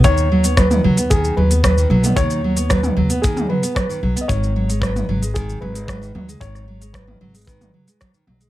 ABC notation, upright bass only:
X:1
M:4/4
L:1/8
Q:1/4=113
K:Bmix
V:1 name="Upright bass" clef=bass
D,,3 D,,2 D,,2 B,,, | D,,3 D,,2 z2 B,,, | G,,,3 G,,,2 G,,,2 D,, | G,,,3 G,,,2 z2 B,,, |]